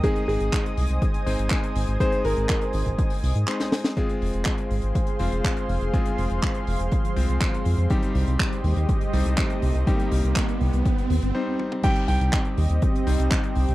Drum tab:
CC |----------------|----------------|----------------|----------------|
HH |xxoxxxoxxxoxxxox|xxoxxxoxxooxxxox|xxoxxxoxxxoxxxox|xxoxxxoxxxoxxxox|
CP |----x-------x---|----x-------x---|----x-------x---|----x-------x---|
SD |----------------|-------------ooo|----------------|----------------|
T1 |----------------|----------------|----------------|----------------|
T2 |----------------|----------------|----------------|----------------|
BD |o---o---o---o---|o---o--oo-------|o---o---o---o---|o---o---o---o---|

CC |----------------|----------------|x---------------|
HH |xxoxxxoxxxoxxxox|xxoxxxoxxxox----|xxoxxxoxxxoxxxox|
CP |----x-------x---|----x-----------|----x-------x---|
SD |----------------|----------------|----------------|
T1 |----------------|--------------o-|----------------|
T2 |----------------|---------------o|----------------|
BD |o---o---o---o---|o---o---o-------|o---o---o---o---|